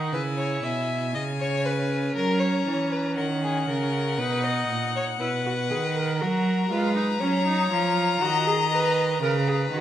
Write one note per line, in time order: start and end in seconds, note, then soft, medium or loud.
0.00 0.14 D#3 medium
0.00 0.15 D#4 medium
0.00 0.12 A#4 medium
0.00 0.14 F#5 medium
0.12 0.63 C#3 medium
0.12 1.15 E4 medium
0.12 0.21 B4 medium
0.12 0.62 G#5 medium
0.38 0.65 C#5 medium
0.63 1.16 B2 medium
0.63 1.14 E5 medium
0.63 2.12 G#5 medium
1.15 2.15 C#3 medium
1.15 4.21 C#4 medium
1.15 1.23 D#5 medium
1.40 1.67 C#5 loud
1.65 2.16 B4 medium
2.16 2.66 F#3 medium
2.16 2.41 A#4 loud
2.16 3.15 A#5 medium
2.40 2.94 C#5 medium
2.67 3.19 E3 medium
2.92 3.16 B4 medium
3.16 3.68 D#3 medium
3.16 3.25 A#4 medium
3.16 6.22 F#5 medium
3.43 3.68 G#4 medium
3.68 4.20 C#3 medium
3.68 4.20 A#4 medium
4.18 4.68 B2 medium
4.18 5.20 D#4 medium
4.18 4.46 B4 loud
4.44 4.94 D#5 medium
4.69 5.19 A#2 medium
4.96 5.04 C#5 loud
5.19 5.72 B2 medium
5.19 5.28 E4 medium
5.19 6.19 B4 loud
5.46 5.54 F#4 medium
5.70 6.22 D#3 medium
5.70 5.78 G#4 medium
5.95 6.23 A#4 medium
6.20 6.70 F#3 medium
6.20 6.71 F#4 loud
6.20 6.73 A#4 medium
6.20 9.80 A#5 loud
6.70 7.20 G#3 medium
6.70 6.95 F4 medium
6.70 7.22 B4 medium
6.96 7.04 D#4 medium
7.20 7.70 F#3 medium
7.20 7.45 C#4 loud
7.20 8.21 C#5 medium
7.46 7.71 D#4 loud
7.71 8.20 F3 medium
7.71 8.23 F4 loud
8.21 9.20 D#3 medium
8.21 8.46 F#4 loud
8.21 9.21 D#5 medium
8.47 8.55 G#4 loud
8.72 9.21 B4 loud
9.22 9.71 C#3 loud
9.22 9.30 A#4 loud
9.22 9.80 B4 loud
9.47 9.55 G#4 loud
9.72 9.80 D#3 loud
9.72 9.80 F#4 loud